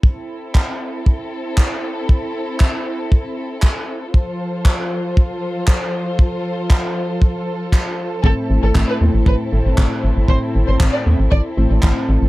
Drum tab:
CP |--x---x-|--x---x-|--x---x-|--x---x-|
BD |o-o-o-o-|o-o-o-o-|o-o-o-o-|o-o-o-o-|

CP |--x---x-|--x---x-|
BD |o-o-o-o-|o-o-o-o-|